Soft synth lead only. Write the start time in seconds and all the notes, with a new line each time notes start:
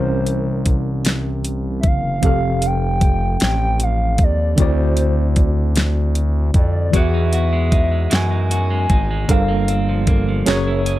Already playing: C5
1.80 E5
1.87 F5
2.66 G5
3.44 G5
3.83 F5
4.23 D5
4.62 C5
6.57 D5
6.96 E5
8.13 G#5
9.31 F5